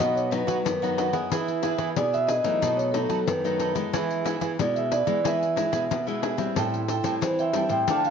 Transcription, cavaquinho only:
0.00 0.30 F#4 medium
0.00 0.31 B4 medium
0.00 0.32 D#5 medium
0.00 0.32 F#5 medium
0.31 0.46 F#4 soft
0.31 0.46 B4 soft
0.31 0.46 D#5 soft
0.31 0.47 F#5 soft
0.47 0.57 F#4 medium
0.47 0.57 B4 medium
0.47 0.57 D#5 medium
0.47 0.58 F#5 medium
0.83 0.97 B4 soft
0.83 0.98 D#5 soft
0.83 0.97 F#5 soft
0.98 1.13 F#4 medium
0.98 1.14 B4 medium
0.98 1.13 D#5 medium
0.98 1.12 F#5 medium
1.14 1.30 B4 soft
1.14 1.30 D#5 soft
1.14 1.29 F#5 soft
1.31 1.62 E4 medium
1.31 1.62 G#4 medium
1.31 1.63 B4 medium
1.31 1.63 E5 medium
1.63 1.78 E4 medium
1.63 1.78 G#4 medium
1.63 1.78 B4 medium
1.63 1.79 E5 medium
1.79 1.89 E4 medium
1.79 1.89 G#4 medium
1.79 1.89 B4 medium
1.79 1.89 E5 medium
2.14 2.27 G#4 soft
2.14 2.28 B4 soft
2.14 2.29 E5 soft
2.28 2.44 E4 soft
2.28 2.44 G#4 soft
2.28 2.44 B4 soft
2.28 2.43 E5 soft
2.44 2.61 G#4 soft
2.44 2.61 B4 soft
2.44 2.60 E5 soft
2.61 2.92 D#4 medium
2.61 2.93 A4 medium
2.61 2.93 B4 medium
2.61 2.94 D#5 medium
2.94 3.08 D#4 soft
2.94 3.08 A4 soft
2.94 3.09 B4 soft
2.94 3.08 D#5 medium
3.09 3.19 D#4 medium
3.09 3.19 A4 medium
3.09 3.20 B4 medium
3.09 3.20 D#5 medium
3.45 3.59 A4 soft
3.45 3.60 B4 soft
3.45 3.60 D#5 soft
3.60 3.75 D#4 medium
3.60 3.75 A4 medium
3.60 3.75 B4 medium
3.60 3.74 D#5 medium
3.75 3.92 A4 soft
3.75 3.92 B4 soft
3.75 3.91 D#5 soft
3.94 4.24 E4 medium
3.94 4.24 G#4 medium
3.94 4.25 B4 medium
3.94 4.26 E5 medium
4.25 4.40 E4 medium
4.25 4.40 G#4 medium
4.25 4.41 B4 medium
4.25 4.41 E5 medium
4.41 4.51 E4 medium
4.41 4.51 G#4 medium
4.41 4.52 B4 medium
4.41 4.52 E5 medium
4.76 4.91 G#4 soft
4.76 4.91 B4 soft
4.76 4.91 E5 soft
4.91 5.07 E4 soft
4.91 5.07 G#4 soft
4.91 5.06 B4 soft
4.91 5.05 E5 medium
5.06 5.23 G#4 soft
5.06 5.23 B4 soft
5.06 5.23 E5 soft
5.24 5.55 E4 medium
5.24 5.56 G#4 medium
5.24 5.56 B4 medium
5.24 5.56 E5 medium
5.56 5.71 E4 soft
5.56 5.71 G#4 soft
5.56 5.72 B4 soft
5.56 5.72 E5 soft
5.72 5.82 E4 medium
5.72 5.82 G#4 medium
5.72 5.83 B4 medium
5.72 5.83 E5 medium
6.07 6.21 G#4 soft
6.07 6.22 B4 soft
6.07 6.22 E5 soft
6.22 6.38 E4 medium
6.22 6.38 G#4 medium
6.22 6.38 B4 medium
6.22 6.37 E5 medium
6.38 6.55 G#4 soft
6.38 6.55 B4 soft
6.38 6.54 E5 soft
6.57 6.87 A4 medium
6.57 6.88 C5 medium
6.57 6.88 E5 medium
6.57 6.89 G5 medium
6.89 7.03 A4 medium
6.89 7.03 C5 medium
6.89 7.04 E5 medium
6.89 7.04 G5 medium
7.05 7.14 A4 medium
7.05 7.14 C5 medium
7.05 7.14 E5 medium
7.05 7.14 G5 medium
7.40 7.54 C5 soft
7.40 7.55 E5 soft
7.40 7.54 G5 soft
7.55 7.70 A4 soft
7.55 7.70 C5 soft
7.55 7.71 E5 medium
7.55 7.70 G5 medium
7.71 7.87 C5 soft
7.71 7.87 E5 soft
7.71 7.86 G5 soft
7.90 8.10 D4 medium
7.90 8.10 A4 medium
7.90 8.10 D5 medium
7.90 8.10 F5 medium

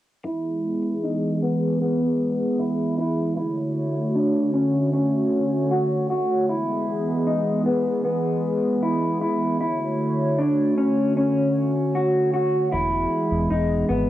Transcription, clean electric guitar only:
0.25 1.03 E4 medium
1.04 1.42 D#4 medium
1.42 1.80 B3 medium
1.82 2.59 B3 medium
2.59 2.97 E4 medium
2.98 3.36 E4 medium
3.37 4.15 E4 medium
4.15 4.53 D4 medium
4.54 4.92 C#4 medium
4.93 5.71 C#4 medium
5.71 6.09 F#4 medium
6.10 6.49 F#4 medium
6.49 7.27 E4 medium
7.27 7.66 D#4 medium
7.66 8.04 B3 medium
8.05 8.83 B3 medium
8.83 9.20 E4 medium
9.21 9.60 E4 medium
9.61 10.38 E4 medium
10.39 10.77 D4 medium
10.78 11.16 C#4 medium
11.17 11.95 C#4 medium
11.95 12.32 F#4 medium
12.34 12.72 F#4 medium
12.72 13.50 E4 medium
13.50 13.89 D#4 medium
13.89 14.10 B3 medium

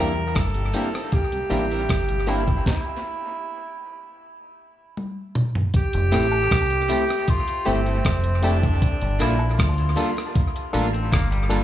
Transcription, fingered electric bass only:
0.00 0.34 E2 medium
0.36 0.72 G1 medium
1.51 1.90 A1 medium
1.90 2.63 G1 medium
5.95 6.12 F1 loud
6.14 6.49 A1 medium
6.52 6.87 C2 medium
7.68 8.03 G1 medium
8.06 8.78 F1 medium
9.02 9.19 G1 medium
9.21 9.56 A#1 medium
9.59 9.95 D2 loud
10.75 11.10 A1 loud
11.13 11.64 G1 medium

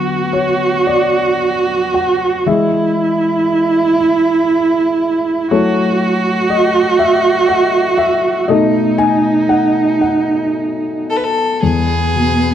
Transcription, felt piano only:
0.00 2.43 D3 soft
0.00 2.43 F#3 soft
0.00 2.43 B3 soft
0.00 0.85 F#4 soft
0.00 0.38 B4 medium
0.33 0.46 C#5 medium
0.87 1.98 D5 medium
1.94 2.43 F#5 medium
2.46 3.97 E3 soft
2.46 3.97 G#3 soft
2.46 3.97 G#4 medium
2.46 3.97 D#5 medium
2.46 3.97 E5 medium
5.51 6.96 F#3 medium
5.51 6.96 A3 soft
5.51 6.97 E4 medium
5.51 6.97 A4 medium
5.51 6.46 C#5 medium
6.50 7.02 D#5 medium
6.99 7.51 E5 medium
7.48 8.01 F#5 medium
7.98 8.51 E5 medium
8.48 9.17 B2 medium
8.48 9.17 A3 medium
8.48 9.17 D#4 medium
8.48 10.00 A4 medium
8.48 9.01 D#5 medium
8.98 9.10 G#5 loud
9.49 10.00 F#5 medium
10.01 11.18 F#5 medium
11.63 12.54 E2 medium
12.15 12.54 B2 soft

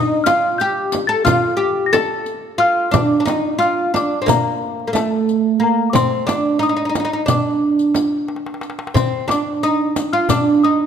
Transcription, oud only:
0.00 0.26 D#4 loud
0.26 0.61 F4 medium
0.61 1.08 G4 loud
1.09 1.24 A4 loud
1.25 1.56 F4 loud
1.57 1.92 G4 medium
1.93 2.58 A4 loud
2.58 2.91 F4 loud
2.91 3.19 D4 medium
3.20 3.25 D4 medium
3.25 3.58 D#4 loud
3.59 3.93 F4 loud
3.94 4.21 D4 medium
4.22 4.28 C4 medium
4.26 4.86 A#3 medium
4.87 4.93 A#3 medium
4.93 5.57 A3 medium
5.60 5.95 A#3 medium
5.93 6.25 C4 medium
6.27 6.59 D4 medium
6.59 6.68 D#4 medium
6.69 6.75 D#4 medium
6.77 6.84 D#4 medium
6.85 6.88 D#4 medium
6.89 6.98 D#4 medium
7.00 7.03 D#4 medium
7.05 7.12 D#4 medium
7.13 7.22 D#4 medium
7.26 8.57 D4 medium
8.94 9.27 C4 medium
9.28 9.63 D4 medium
9.63 10.10 D#4 medium
10.13 10.29 F4 medium
10.30 10.64 D4 medium
10.64 10.86 D#4 medium

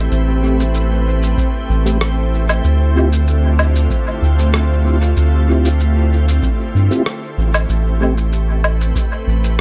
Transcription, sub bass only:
0.11 1.35 A1 loud
1.69 2.61 A1 medium
2.64 3.88 D2 loud
4.22 5.14 D2 medium
5.17 6.40 D2 loud
6.75 6.89 G2 medium
7.38 7.66 A1 loud
7.69 8.93 A1 loud
9.27 9.61 A1 medium

